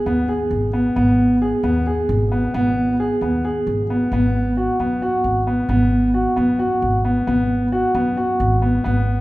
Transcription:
0.06 upright bass D#2, grand piano B3
0.29 grand piano G#4
0.51 upright bass G#1
0.73 grand piano B3
0.96 upright bass G#1, grand piano B3
1.42 grand piano G#4
1.63 upright bass D#2, grand piano B3
1.87 grand piano G#4
2.09 upright bass G#1
2.32 grand piano B3
2.54 upright bass G#1, grand piano B3
3.00 grand piano G#4
3.21 upright bass D#2, grand piano B3
3.45 grand piano G#4
3.67 upright bass G#1
3.90 grand piano B3
4.12 upright bass G#1, grand piano B3
4.57 grand piano F#4
4.79 upright bass F#2, grand piano B3
5.02 grand piano F#4
5.24 upright bass G#1
5.47 grand piano B3
5.69 upright bass G#1, grand piano B3
6.14 grand piano F#4
6.36 upright bass F#2, grand piano B3
6.59 grand piano F#4
6.82 upright bass G#1
7.05 grand piano B3
7.27 upright bass G#1, grand piano B3
7.72 grand piano F#4
7.95 upright bass F#2, grand piano B3
8.17 grand piano F#4
8.40 upright bass G#1
8.62 grand piano B3
8.84 upright bass G#1, grand piano B3

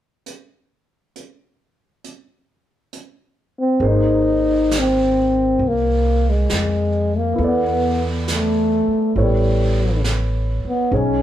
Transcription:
0.26 closed hi-hat
1.16 closed hi-hat
2.04 closed hi-hat
2.93 closed hi-hat
3.60 trombone C4
3.80 upright bass G#1, grand piano A#3 D#4 G#4 C5, brush sweep
3.88 trombone D#4
4.71 snare, hi-hat pedal
4.79 trombone C4
5.59 upright bass C2, brush sweep
5.68 trombone A#3
6.30 trombone G#3
6.49 upright bass F2, snare, hi-hat pedal
7.18 trombone A#3
7.33 grand piano B3 E4
7.38 upright bass E2, grand piano A4, brush sweep
7.44 trombone B3, grand piano D5
8.28 snare, hi-hat pedal
8.35 trombone A3
8.87 muted upright bass stroke
9.16 upright bass A1, grand piano B3 E4 A4 C#5, brush sweep
9.22 trombone G3
10.04 snare, hi-hat pedal
10.65 trombone B3, muted upright bass stroke
10.92 upright bass B1, grand piano C#4 D#4 G#4 C#5, brush sweep
10.96 trombone C#4

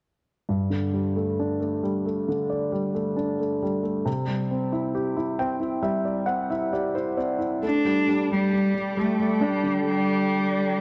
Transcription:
0.49 grand piano G2
0.70 grand piano D3
0.93 grand piano G3
1.16 grand piano A3
1.39 grand piano D4
1.60 grand piano A3
1.83 grand piano G3
2.06 grand piano A3
2.29 grand piano D3
2.50 grand piano D5
2.72 grand piano G3
2.94 grand piano A3
3.17 grand piano D4
3.39 grand piano A3
3.62 grand piano G3
3.83 grand piano A3
4.05 grand piano C3
4.27 grand piano G3
4.51 grand piano C4
4.72 grand piano E4
4.95 grand piano G4
5.17 grand piano E4
5.39 grand piano C4 G5
5.60 grand piano E4
5.82 grand piano G3 E5
6.05 grand piano D5
6.26 grand piano C4 F#5
6.50 grand piano E4 E5
6.73 grand piano G4 D5
6.95 grand piano E4 C5
7.17 grand piano C4 D5
7.39 grand piano E4
7.63 grand piano A3, cello D4, ambient pad A4 D5 G5 D6
7.85 grand piano G3
8.07 grand piano G3
8.31 grand piano G3, cello G3
8.53 grand piano G3
8.74 grand piano G3
8.97 grand piano G3, cello A3
9.20 grand piano G3
9.41 cello G3, grand piano D4
9.63 grand piano D3
9.89 cello G3

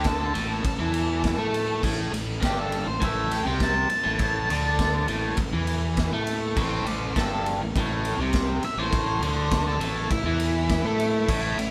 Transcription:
Already playing: fingered electric bass D2, overdriven electric guitar D3
0.04 lead electric guitar A4, kick, snare, ride
0.34 fingered electric bass A1, overdriven electric guitar A2, ride
0.64 fingered electric bass A1, overdriven electric guitar A2, kick, ride
0.79 fingered electric bass E2, overdriven electric guitar E3
0.94 ride
1.24 kick, snare, ride
1.37 fingered electric bass A2, overdriven electric guitar A3
1.54 ride
1.83 fingered electric bass A1, overdriven electric guitar A2, kick, crash
2.13 fingered electric bass A1, overdriven electric guitar A2, ride
2.41 fingered electric bass G1, overdriven electric guitar G2, lead electric guitar G4, kick, snare, ride
2.59 lead electric guitar A4
2.72 ride
2.86 fingered electric bass A1, overdriven electric guitar A2, lead electric guitar C5
3.01 fingered electric bass A1, overdriven electric guitar A2, lead electric guitar E5, kick, ride
3.31 lead electric guitar G5, ride
3.46 fingered electric bass C2, overdriven electric guitar C3
3.60 lead electric guitar A5, kick, snare, ride
3.90 muted overdriven electric guitar stroke, muted fingered electric bass stroke, ride
4.04 fingered electric bass A1, overdriven electric guitar A2
4.19 kick, ride
4.49 fingered electric bass D2, overdriven electric guitar D3, ride
4.79 kick, snare, ride
5.08 fingered electric bass A1, overdriven electric guitar A2, ride
5.37 fingered electric bass A1, overdriven electric guitar A2, kick, ride
5.53 fingered electric bass E2, overdriven electric guitar E3
5.67 ride
5.97 kick, snare, ride
6.12 fingered electric bass A2, overdriven electric guitar A3
6.27 ride
6.57 fingered electric bass A1, overdriven electric guitar A2, lead electric guitar G4 E5, kick, crash
6.83 fingered electric bass A1, overdriven electric guitar A2, lead electric guitar E4 C5, ride
7.16 fingered electric bass G1, overdriven electric guitar G2, lead electric guitar A4, kick, snare, ride
7.46 ride
7.59 fingered electric bass A1, overdriven electric guitar A2
7.76 fingered electric bass A1, overdriven electric guitar A2, kick, ride
8.05 ride
8.18 fingered electric bass C2, overdriven electric guitar C3
8.33 kick, snare, ride
8.63 lead electric guitar E5, muted fingered electric bass stroke, muted overdriven electric guitar stroke, ride
8.77 fingered electric bass A1, overdriven electric guitar A2, lead electric guitar C5
8.92 kick, ride
9.20 fingered electric bass D2, overdriven electric guitar D3, ride
9.51 kick, snare, ride
9.67 lead electric guitar A4
9.80 fingered electric bass A1, overdriven electric guitar A2, ride
10.11 fingered electric bass A1, overdriven electric guitar A2, lead electric guitar E4, kick, ride
10.24 fingered electric bass E2, overdriven electric guitar E3
10.40 ride
10.69 kick, snare, ride
10.84 fingered electric bass A2, overdriven electric guitar A3
11.00 ride
11.28 fingered electric bass A1, overdriven electric guitar A2, kick, crash
11.58 fingered electric bass A1, overdriven electric guitar A2, ride

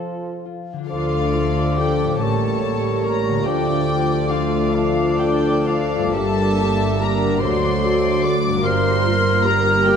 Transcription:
Already playing: bassoon F3, harp F3 C4 F5, clarinet F4, cor anglais A4
0.00 harp A4
0.45 harp F4
0.73 harp D3
0.78 harp D4 F4
0.86 cello section D3, bassoon F3, viola section F3 D4, harp A4, clarinet A4, violin section D5 F5, flute D6
0.91 double bass section D2, french horn section A3 A4, cor anglais F4
1.34 viola section A3 F4
1.77 viola section F3 D4, cor anglais G4, violin section G5
2.04 harp A2
2.09 harp C#4
2.13 harp G4
2.18 double bass section A1, cello section A2, bassoon G3, viola section A3 C#4, french horn section A#3 G4, harp A#4, clarinet A#4, violin section C#5 A5
2.22 cor anglais A4, flute C#6
2.63 viola section G3 A#3
3.04 viola section A3 C#4, cor anglais A#4, violin section A#5
3.29 harp D3
3.34 harp D4
3.38 harp F4 A4
3.45 cello section D2, double bass section D2, viola section D3 D4, bassoon F3, french horn section A3 F4, cor anglais G4, clarinet A4, violin section D5 G5, flute D6
3.88 viola section F3 F4
4.31 viola section D3 D4, cor anglais F4, violin section F5
4.74 viola section F3 F4, cor anglais D4, violin section D5 F5
5.19 viola section D3 D4, violin section G5
5.67 viola section F3 F4, violin section F5
5.96 harp G2
6.01 harp D4
6.05 harp G4
6.10 cor anglais A4, harp A#4, violin section E5 A5
6.14 double bass section G1, cello section G2, viola section G3 D4, bassoon G3, french horn section A#3 G4, clarinet A#4
6.60 viola section A#3 G4
6.99 viola section G3 D4, cor anglais A#4, violin section A#5
7.24 harp D3
7.28 harp D4
7.33 harp F#4
7.38 harp A4, cor anglais C5, violin section D5
7.43 cello section D2, double bass section D2, bassoon F#3, viola section F#3 F#4, french horn section A3 F#4, clarinet A4, violin section C6
7.85 viola section A3 A4
8.24 viola section F#3 F#4, cor anglais D5, violin section D6
8.47 harp G2
8.52 harp D4
8.56 harp F4
8.61 cello section G2, viola section G3 G4, french horn section A#3 G4, harp A#4, clarinet A#4, violin section A#4 C6, flute F6
8.65 double bass section G1, bassoon G3, cor anglais C5
9.05 viola section A#3 F4
9.45 viola section G3 G4, cor anglais A#4, violin section A#5
9.86 viola section A#3 F4, cor anglais G4, violin section G5

